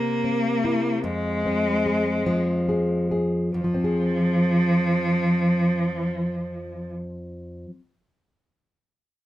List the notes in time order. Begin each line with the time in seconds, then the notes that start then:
Already playing: C3 A#3
0.24 C4
0.64 E4
1.02 F2 G#3
1.46 C4
1.86 G#4
2.26 F3
2.69 G#4
3.11 G#4
3.54 F2 F3
3.64 F3
3.74 C4
3.84 G#4